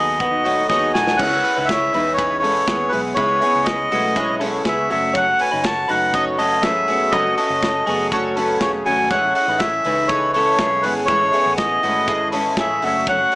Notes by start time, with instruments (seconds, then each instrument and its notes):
Already playing: fingered electric bass D#2, steel-string acoustic guitar B2 D#3 F#3 B3 D#4, clean electric guitar B3 G#4, synth keys D#4 F#4 A4 B4, melodica D#5
0.20 clean electric guitar B3 F#4, synth keys D#4 F#4 B4, kick, closed hi-hat
0.30 steel-string acoustic guitar F#3 B3 D#4
0.44 clean electric guitar A3 F#4, synth keys D#4 F#4 C#5, open hi-hat
0.55 steel-string acoustic guitar F#3 B3 D#4
0.68 fingered electric bass D#2, clean electric guitar B3 G#4, synth keys D#4 F#4 C#5, melodica D#5, kick, snare
0.81 steel-string acoustic guitar F#3 B3 D#4
0.94 fingered electric bass B1, clean electric guitar A3 F#4, synth keys D#4 F#4 A4, melodica G#5, snare
1.07 snare
1.17 fingered electric bass C#2, steel-string acoustic guitar C#3 G#3 B3, synth keys C#4 E4 G#4 B4, clean electric guitar C#5, melodica F#5, kick, crash
1.21 steel-string acoustic guitar E4, clean electric guitar E4
1.30 steel-string acoustic guitar G#3 E4
1.43 synth keys C#4 E4 G#4 B4, open hi-hat
1.56 fingered electric bass C#2, clean electric guitar D#4 B4, melodica F#5
1.65 synth keys C#4 E4 G#4 C#5, melodica E5, kick, hi-hat pedal, ride
1.70 clean electric guitar E4 C#5, snare
1.92 fingered electric bass E2, steel-string acoustic guitar C#3 G#3 B3 E4, synth keys C#4 E4 G#4 B4, clean electric guitar D#4 B4, open hi-hat
2.13 synth keys C#4 E4, melodica C#5
2.18 synth keys G#4 B4, kick, hi-hat pedal, ride
2.39 steel-string acoustic guitar C#3, synth keys C#4, melodica C#5
2.43 steel-string acoustic guitar G#3 B3 E4, clean electric guitar C#4 A4, synth keys E4 G#4 B4, open hi-hat
2.67 fingered electric bass D#2, steel-string acoustic guitar C#3 G#3 B3 E4, clean electric guitar B3 G#4, synth keys C#4 E4 G#4 B4, kick, snare, hi-hat pedal, ride
2.89 steel-string acoustic guitar C#3 G#3, synth keys C#4 E4 G#4 B4, clean electric guitar G#4, melodica B4, open hi-hat
2.93 fingered electric bass B1, steel-string acoustic guitar B3 E4, clean electric guitar B3
3.14 fingered electric bass C#2, steel-string acoustic guitar C#3 G#3 B3, clean electric guitar G#3 E4, synth keys C#4 E4 G#4 B4, melodica C#5, kick, hi-hat pedal, ride
3.19 steel-string acoustic guitar E4
3.28 steel-string acoustic guitar G#3 B3 E4
3.41 clean electric guitar B3 G#4, synth keys C#4 E4 G#4 C#5, open hi-hat
3.55 fingered electric bass C#2
3.64 synth keys C#4 E4 G#4 B4, melodica D#5, kick, snare, hi-hat pedal, ride
3.90 fingered electric bass B1, steel-string acoustic guitar C#3 G#3 B3 E4, clean electric guitar A3 F#4, synth keys C#4 E4 G#4 B4, open hi-hat
4.16 clean electric guitar G#3 E4, synth keys C#4 E4 G#4 C#5, kick, hi-hat pedal, ride
4.39 steel-string acoustic guitar C#3 G#3 B3 E4, synth keys C#4 E4 G#4 C#5, clean electric guitar C#4 A4, open hi-hat
4.64 fingered electric bass C#2, steel-string acoustic guitar C#3 G#3 B3 E4, clean electric guitar B3 G#4, synth keys C#4 E4 G#4 B4, melodica E5, kick, snare, hi-hat pedal, ride
4.89 fingered electric bass F#1, steel-string acoustic guitar F#3 A3 C#4 F#4, clean electric guitar A3 F#4, synth keys C#4 F#4 A4 C#5, melodica E5, open hi-hat
5.13 steel-string acoustic guitar F#3 A3 C#4, clean electric guitar F#4 C#5, melodica F#5, kick, hi-hat pedal, ride
5.18 steel-string acoustic guitar F#4
5.31 steel-string acoustic guitar A3
5.39 synth keys C#4 F#4 A4 B4, melodica G#5, open hi-hat
5.51 fingered electric bass F#1, clean electric guitar D#4 B4
5.63 synth keys C#4 F#4 A4 C#5, clean electric guitar F#4 C#5, melodica A5, kick, snare, hi-hat pedal, ride
5.88 fingered electric bass F#1, steel-string acoustic guitar F#3 A3 C#4, synth keys C#4 F#4 A4 C#5, clean electric guitar D#4 B4, melodica F#5, open hi-hat
5.92 steel-string acoustic guitar F#4
6.13 synth keys C#4 F#4 A4 C#5, melodica D#5, kick, hi-hat pedal, ride
6.38 steel-string acoustic guitar F#3 A3 C#4 F#4, synth keys C#4 F#4 A4 C#5, clean electric guitar C#4 A4, melodica D#5, open hi-hat
6.62 fingered electric bass A1, steel-string acoustic guitar F#3 A3 C#4, synth keys C#4 F#4 A4 B4, clean electric guitar C#4 G#4, melodica E5, kick, snare, hi-hat pedal, ride
6.67 steel-string acoustic guitar F#4
6.87 fingered electric bass E1, steel-string acoustic guitar F#3 A3 C#4 F#4, clean electric guitar B3 G#4, synth keys C#4 F#4 A4 C#5, open hi-hat
7.12 fingered electric bass F#1, steel-string acoustic guitar F#3 A3 C#4 F#4, clean electric guitar A3 F#4, synth keys C#4 F#4 A4 D#5, melodica D#5, kick, hi-hat pedal, ride
7.24 steel-string acoustic guitar A3 C#4 F#4
7.37 synth keys C#4 F#4 A4 C#5, clean electric guitar C#4 A4, melodica D#5, open hi-hat
7.50 fingered electric bass F#1
7.62 synth keys C#4 F#4 A4 D#5, kick, snare, hi-hat pedal, ride
7.86 fingered electric bass F#1, steel-string acoustic guitar F#3 A3 C#4 F#4, clean electric guitar B3 G#4, synth keys C#4 F#4 A4 C#5, open hi-hat
8.12 clean electric guitar A3 F#4, synth keys C#4 F#4 A4 C#5, kick, hi-hat pedal, ride
8.35 steel-string acoustic guitar F#3 A3 C#4 F#4, synth keys C#4 F#4 A4 B4, clean electric guitar C#4 A4, open hi-hat
8.60 fingered electric bass E1, steel-string acoustic guitar F#3 A3 C#4 F#4, synth keys C#4 F#4 A4 C#5, clean electric guitar C#4 G#4, melodica C#5, kick, snare, hi-hat pedal, ride
8.85 fingered electric bass G#1, steel-string acoustic guitar F#3 A3 C#4 F#4, clean electric guitar A3 F#4, synth keys C#4 F#4 A4 C#5, melodica G#5, open hi-hat
9.10 fingered electric bass A1, steel-string acoustic guitar A2 E3 G#3 C#4 E4, synth keys E4 G#4 A4 C#5, clean electric guitar E4 C#5, melodica F#5, kick, hi-hat pedal, ride
9.21 steel-string acoustic guitar G#3 C#4 E4
9.35 synth keys E4 G#4 A4 D#5, melodica F#5, open hi-hat
9.48 fingered electric bass A1, clean electric guitar D#4 B4
9.59 synth keys E4 G#4 A4 C#5, clean electric guitar E4 C#5, melodica E5, kick, snare, hi-hat pedal, ride
9.83 fingered electric bass C#2, steel-string acoustic guitar E3 G#3 C#4 E4, synth keys E4 G#4 A4 C#5, clean electric guitar B4, open hi-hat
9.87 clean electric guitar D#4
10.07 synth keys E4 G#4 A4 B4, melodica C#5, kick, hi-hat pedal, ride
10.33 steel-string acoustic guitar E3 G#3 C#4 E4, synth keys E4 G#4 A4 C#5, clean electric guitar A4, melodica C#5, open hi-hat
10.37 clean electric guitar C#4
10.58 fingered electric bass B1, steel-string acoustic guitar E3 G#3 C#4 E4, clean electric guitar C#4 G#4, synth keys E4 G#4 A4 B4, kick, snare, hi-hat pedal, ride
10.82 fingered electric bass G#1, steel-string acoustic guitar E3 G#3 C#4, clean electric guitar B3 G#4, synth keys E4 G#4 A4 C#5, melodica B4, open hi-hat
10.87 steel-string acoustic guitar E4
11.06 fingered electric bass A1, steel-string acoustic guitar A2 E3, synth keys E4 G#4 A4, clean electric guitar E4, melodica C#5, kick, hi-hat pedal, ride
11.10 clean electric guitar G#3, steel-string acoustic guitar G#3 C#4 E4, synth keys C#5
11.22 steel-string acoustic guitar G#3 C#4 E4
11.33 clean electric guitar B3 G#4, synth keys E4 G#4 A4 C#5, open hi-hat
11.46 fingered electric bass A1
11.58 synth keys E4 G#4 A4 D#5, melodica D#5, kick, snare, hi-hat pedal, ride
11.82 fingered electric bass G#1, steel-string acoustic guitar E3 G#3 C#4 E4, clean electric guitar A3 F#4, synth keys E4 G#4 A4 B4, open hi-hat
12.08 clean electric guitar G#3 E4, synth keys E4 G#4 A4 D#5, kick, hi-hat pedal, ride
12.32 steel-string acoustic guitar E3 G#3 C#4, clean electric guitar C#4 A4, synth keys E4 G#4 A4 C#5, open hi-hat
12.36 steel-string acoustic guitar E4
12.57 fingered electric bass A1, steel-string acoustic guitar E3 G#3 C#4 E4, clean electric guitar C#4 G#4, synth keys E4 G#4 A4 C#5, melodica E5, kick, snare, hi-hat pedal, ride
12.82 fingered electric bass F#1, steel-string acoustic guitar C#3 F#3 A3 C#4, clean electric guitar A3 F#4, synth keys C#4 F#4 A4 C#5, melodica E5, open hi-hat
13.07 steel-string acoustic guitar F#2 C#3 F#3 A3 C#4, clean electric guitar F#4 C#5, melodica F#5, kick, hi-hat pedal, ride
13.18 steel-string acoustic guitar F#3 A3 C#4
13.32 synth keys C#4, open hi-hat